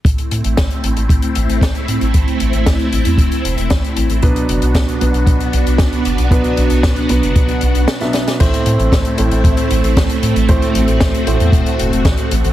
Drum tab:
CC |----------------|----------------|----------------|----------------|
HH |xxxxxxxxxxxxxxxx|xxxxxxxxxxxxxxxx|xxxxxxxxxxxxxxxx|xxxxxxxxxxxxxxxx|
SD |----o-------o---|----o-------o---|----o-------o---|----o-------oooo|
BD |o---o---o---o---|o---o---o---o---|o---o---o---o---|o---o---o-------|

CC |x---------------|----------------|
HH |xxxxxxxxxxxxxxxx|xxxxxxxxxxxxxxxx|
SD |----o-------o---|----o-------o---|
BD |o---o---o---o---|o---o---o---o---|